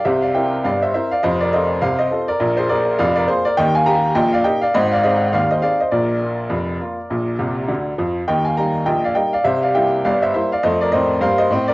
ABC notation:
X:1
M:2/4
L:1/16
Q:"Swing 16ths" 1/4=102
K:Eb
V:1 name="Upright piano"
[c=e] [df] [eg]2 [df] [ce] [ce] [df] | [ce] [Bd] [ce]2 [cf] [ce]2 [Bd]- | [Bd] [Ac] [Bd]2 [df] [Bd] [Ac] [Bd] | [eg] [fa] [gb]2 [eg] [df] [eg] [df] |
[ce] [df] [ce]2 [df] [ce] [df] [ce] | [Bd]8- | [Bd]6 z2 | [eg] [fa] [gb]2 [eg] [df] [eg] [df] |
[c=e] [df] [eg]2 [df] [ce] [ce] [df] | [ce] [Bd] [ce]2 [cf] [ce]2 [Bd] |]
V:2 name="Upright piano" clef=bass
[C,,C,]2 [C=EB]2 [G,,,G,,]2 [CEB]2 | [F,,,F,,]2 [CF=A]2 [C,,C,]2 [CFA]2 | [B,,,B,,]2 [B,FA]2 [F,,,F,,]2 [B,F]2 | [E,,E,]2 [B,EG]2 [B,,,B,,]2 [B,EG]2 |
[A,,,A,,]2 [CEA]2 [E,,E,]2 [CEA]2 | [B,,,B,,]2 [B,F]2 [F,,,F,,]2 [B,F]2 | [B,,,B,,]2 [C,,C,]2 [D,,D,]2 [F,,F,]2 | [E,,E,]2 [G,B,E]2 [B,,,B,,]2 [G,B,E]2 |
[C,,C,]2 [G,B,=E]2 [G,,,G,,]2 [G,B,E]2 | [F,,=A,]2 [=A,,C]2 [G,,B,]2 [A,,C]2 |]